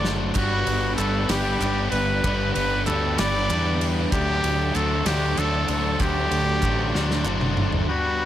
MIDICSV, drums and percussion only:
0, 0, Header, 1, 2, 480
1, 0, Start_track
1, 0, Tempo, 626959
1, 273, Time_signature, 6, 3, 24, 8
1, 6318, End_track
2, 0, Start_track
2, 0, Title_t, "Drums"
2, 36, Note_on_c, 9, 38, 85
2, 112, Note_off_c, 9, 38, 0
2, 266, Note_on_c, 9, 39, 100
2, 267, Note_on_c, 9, 49, 90
2, 274, Note_on_c, 9, 36, 105
2, 343, Note_off_c, 9, 39, 0
2, 343, Note_off_c, 9, 49, 0
2, 350, Note_off_c, 9, 36, 0
2, 511, Note_on_c, 9, 51, 73
2, 587, Note_off_c, 9, 51, 0
2, 754, Note_on_c, 9, 39, 103
2, 754, Note_on_c, 9, 51, 77
2, 830, Note_off_c, 9, 39, 0
2, 831, Note_off_c, 9, 51, 0
2, 988, Note_on_c, 9, 51, 106
2, 993, Note_on_c, 9, 38, 122
2, 1064, Note_off_c, 9, 51, 0
2, 1070, Note_off_c, 9, 38, 0
2, 1235, Note_on_c, 9, 39, 106
2, 1239, Note_on_c, 9, 51, 75
2, 1312, Note_off_c, 9, 39, 0
2, 1316, Note_off_c, 9, 51, 0
2, 1366, Note_on_c, 9, 39, 28
2, 1442, Note_off_c, 9, 39, 0
2, 1468, Note_on_c, 9, 51, 67
2, 1545, Note_off_c, 9, 51, 0
2, 1715, Note_on_c, 9, 51, 95
2, 1717, Note_on_c, 9, 36, 99
2, 1719, Note_on_c, 9, 39, 93
2, 1791, Note_off_c, 9, 51, 0
2, 1793, Note_off_c, 9, 36, 0
2, 1796, Note_off_c, 9, 39, 0
2, 1956, Note_on_c, 9, 51, 83
2, 2032, Note_off_c, 9, 51, 0
2, 2195, Note_on_c, 9, 51, 80
2, 2198, Note_on_c, 9, 39, 92
2, 2272, Note_off_c, 9, 51, 0
2, 2274, Note_off_c, 9, 39, 0
2, 2437, Note_on_c, 9, 51, 110
2, 2442, Note_on_c, 9, 38, 127
2, 2514, Note_off_c, 9, 51, 0
2, 2519, Note_off_c, 9, 38, 0
2, 2676, Note_on_c, 9, 51, 86
2, 2684, Note_on_c, 9, 39, 99
2, 2752, Note_off_c, 9, 51, 0
2, 2760, Note_off_c, 9, 39, 0
2, 2806, Note_on_c, 9, 39, 27
2, 2882, Note_off_c, 9, 39, 0
2, 2918, Note_on_c, 9, 51, 72
2, 2995, Note_off_c, 9, 51, 0
2, 3155, Note_on_c, 9, 51, 104
2, 3157, Note_on_c, 9, 36, 108
2, 3161, Note_on_c, 9, 39, 95
2, 3232, Note_off_c, 9, 51, 0
2, 3234, Note_off_c, 9, 36, 0
2, 3237, Note_off_c, 9, 39, 0
2, 3397, Note_on_c, 9, 51, 83
2, 3474, Note_off_c, 9, 51, 0
2, 3633, Note_on_c, 9, 51, 80
2, 3648, Note_on_c, 9, 39, 86
2, 3710, Note_off_c, 9, 51, 0
2, 3725, Note_off_c, 9, 39, 0
2, 3873, Note_on_c, 9, 51, 110
2, 3878, Note_on_c, 9, 38, 107
2, 3949, Note_off_c, 9, 51, 0
2, 3955, Note_off_c, 9, 38, 0
2, 4113, Note_on_c, 9, 51, 81
2, 4123, Note_on_c, 9, 39, 93
2, 4189, Note_off_c, 9, 51, 0
2, 4200, Note_off_c, 9, 39, 0
2, 4245, Note_on_c, 9, 39, 27
2, 4321, Note_off_c, 9, 39, 0
2, 4351, Note_on_c, 9, 51, 68
2, 4427, Note_off_c, 9, 51, 0
2, 4590, Note_on_c, 9, 51, 97
2, 4594, Note_on_c, 9, 36, 97
2, 4601, Note_on_c, 9, 39, 79
2, 4666, Note_off_c, 9, 51, 0
2, 4671, Note_off_c, 9, 36, 0
2, 4677, Note_off_c, 9, 39, 0
2, 4834, Note_on_c, 9, 51, 71
2, 4836, Note_on_c, 9, 39, 27
2, 4911, Note_off_c, 9, 51, 0
2, 4913, Note_off_c, 9, 39, 0
2, 5071, Note_on_c, 9, 51, 72
2, 5073, Note_on_c, 9, 39, 93
2, 5075, Note_on_c, 9, 36, 79
2, 5148, Note_off_c, 9, 51, 0
2, 5150, Note_off_c, 9, 39, 0
2, 5151, Note_off_c, 9, 36, 0
2, 5323, Note_on_c, 9, 38, 72
2, 5399, Note_off_c, 9, 38, 0
2, 5442, Note_on_c, 9, 38, 62
2, 5518, Note_off_c, 9, 38, 0
2, 5552, Note_on_c, 9, 39, 104
2, 5628, Note_off_c, 9, 39, 0
2, 5675, Note_on_c, 9, 39, 30
2, 5675, Note_on_c, 9, 47, 69
2, 5751, Note_off_c, 9, 47, 0
2, 5752, Note_off_c, 9, 39, 0
2, 5796, Note_on_c, 9, 45, 87
2, 5799, Note_on_c, 9, 39, 30
2, 5872, Note_off_c, 9, 45, 0
2, 5876, Note_off_c, 9, 39, 0
2, 5914, Note_on_c, 9, 43, 79
2, 5991, Note_off_c, 9, 43, 0
2, 6318, End_track
0, 0, End_of_file